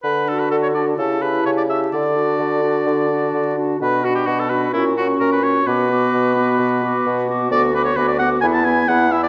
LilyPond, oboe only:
\new Staff \with { instrumentName = "Oboe" } { \time 4/4 \key d \major \tempo 4 = 129 b'8 a'16 b'16 a'16 cis''16 d''8 a'8 b'8 cis''16 d''16 e''8 | d''2.~ d''8 r8 | b'8 fis'16 g'16 fis'16 a'16 b'8 e'8 fis'8 ais'16 b'16 cis''8 | b'2.~ b'8 r8 |
\key b \dorian d''8 b'16 cis''16 b'16 d''16 fis''8 gis''16 a''16 gis''8 fis''8 e''16 d''16 | }